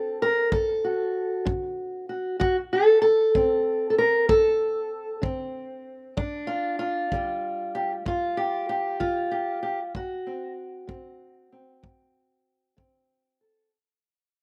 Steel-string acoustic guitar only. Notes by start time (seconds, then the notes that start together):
Already playing: D3 C4 A4
0.22 A#4
0.52 D2 A4
0.84 F#4
1.45 D3
2.09 F#4
2.40 D2 F#4
2.73 A4
3.02 A4
3.35 D3 C4
3.90 A4
3.98 A#4
4.29 D2 A4
5.22 D3 C4
6.17 G2 D4
6.47 F4
6.79 F4
7.12 D3 G3
7.75 G4
8.06 G2 F4
8.37 G4
8.69 G4
9.00 D3 F4
9.31 G4
9.63 G4
9.95 D2 F#4
10.27 C4
10.87 D3 C4
11.52 C4
11.83 D2
12.77 D3 C4
13.41 A4